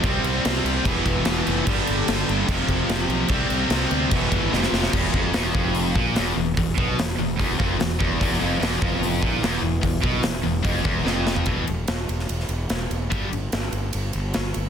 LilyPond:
<<
  \new Staff \with { instrumentName = "Analog synth pad" } { \time 4/4 \key e \phrygian \tempo 4 = 147 << { <g' d''>2 <e e'>2 | <g a'>2 <f g'>2 | d''2 <e e'>4 <f g'>4 | r1 |
r1 | <e e'>1~ | <e e'>1 | r1 |
r1 | } \\ { c'2 b2 | d'2 c'2~ | c'2 b4 c'4 | r1 |
r1 | b1~ | b1 | r1 |
r1 | } >> }
  \new Staff \with { instrumentName = "Distorted electric guitar" } { \clef bass \time 4/4 \key e \phrygian <c g c'>2 <e, b, e>2 | <g, d g>2 <f, c f>2 | <c g c'>2 <e, b, e>4 <f, c f>4 | e,8 f,8 e,8 f,4 ais,8 e,8 e,8 |
e,8 b,8 e,8 e,8 e,8 f,8 e,8 e,8 | e,8 f,8 e,8 f,4 ais,8 e,8 e,8 | e,8 b,8 e,8 e,8 f,8 e,8 f,4 | <e, b, e>8 r2. r8 |
<g, d g>8 r2. r8 | }
  \new Staff \with { instrumentName = "Distorted electric guitar" } { \clef bass \time 4/4 \key e \phrygian <c g c'>2 <e, b, e>2 | <g, d g>2 <f, c f>2 | <c g c'>2 <e, b, e>4 <f, c f>4 | e,8 f,8 e,8 f,4 ais,8 e,8 e,8 |
e,8 b,8 e,8 e,8 e,8 f,8 e,8 e,8 | e,8 f,8 e,8 f,4 ais,8 e,8 e,8 | e,8 b,8 e,8 e,8 f,8 e,8 f,4 | r1 |
r1 | }
  \new Staff \with { instrumentName = "Overdriven electric guitar" } { \clef bass \time 4/4 \key e \phrygian <c g c'>2 <e, b, e>2 | <g, d g>2 <f, c f>2 | <c g c'>2 <e, b, e>4 <f, c f>4 | e,8 f,8 e,8 f,4 ais,8 e,8 e,8 |
e,8 b,8 e,8 e,8 e,8 f,8 e,8 e,8 | e,8 f,8 e,8 f,4 ais,8 e,8 e,8 | e,8 b,8 e,8 e,8 f,8 e,8 f,4 | <e, b, e>8 r2. r8 |
<g, d g>8 r2. r8 | }
  \new Staff \with { instrumentName = "Fingered electric bass" } { \clef bass \time 4/4 \key e \phrygian c,8 c,8 c,8 c,8 e,,8 e,,8 e,,8 f,,8 | g,,8 g,,8 g,,8 g,,8 f,,8 f,,8 f,,8 b,,8 | c,8 c,8 c,8 d,8 e,,8 g,,8 f,,8 f,,8 | e,,8 f,,8 e,,8 f,,4 ais,,8 e,,8 e,,8 |
e,,8 b,,8 e,,8 e,,8 e,,8 f,,8 e,,8 e,,8 | e,,8 f,,8 e,,8 f,,4 ais,,8 e,,8 e,,8 | e,,8 b,,8 e,,8 e,,8 f,,8 e,,8 f,,4 | e,,8 e,,8 e,,8 e,,8 e,,8 e,,8 e,,8 e,,8 |
r8 g,,8 g,,8 g,,8 g,,8 g,,8 g,,8 g,,8 | }
  \new DrumStaff \with { instrumentName = "Drums" } \drummode { \time 4/4 <cymc bd>8 cymc8 <cymc sn>8 cymc8 <cymc bd>8 <cymc bd>8 <cymc sn>8 cymc8 | <cymc bd>8 cymc8 <cymc sn>8 cymc8 <cymc bd>8 <cymc bd>8 <cymc sn>8 cymc8 | <cymc bd>8 cymc8 <cymc sn>8 cymc8 <cymc bd>8 <cymc bd>8 sn16 sn16 sn16 sn16 | <cymc bd>16 sn16 bd8 <hho sn>8 bd8 hho8 bd8 <hho sn>4 |
<hho bd>8 bd8 <hho sn>4 <hho bd>8 bd8 <hho sn>8 bd8 | <hho bd>16 sn8. <hho sn>8 bd8 hho8 bd8 <hho sn>4 | <hho bd>8 bd8 <hho sn>4 <hho bd>8 bd8 sn8 sn16 tomfh16 | <bd cymr>8 cymr8 <cymr sn>8 cymr16 sn16 cymr16 sn16 cymr8 <cymr sn>8 cymr8 |
<bd cymr>8 cymr8 <cymr sn>8 cymr8 cymr8 cymr8 <cymr sn>8 cymr8 | }
>>